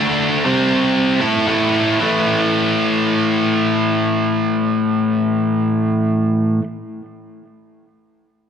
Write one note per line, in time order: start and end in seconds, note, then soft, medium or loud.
0.00 0.44 D3 medium
0.00 0.45 A3 loud
0.00 0.45 D4 loud
0.45 1.20 C3 loud
0.45 1.20 G3 loud
0.45 1.20 C4 loud
1.20 1.46 A3 loud
1.20 1.46 E4 loud
1.20 1.46 A4 loud
1.46 1.97 A2 medium
1.46 1.99 E3 medium
1.46 1.99 A3 loud
1.99 6.59 A2 medium
1.99 6.61 E3 medium
1.99 6.63 A3 loud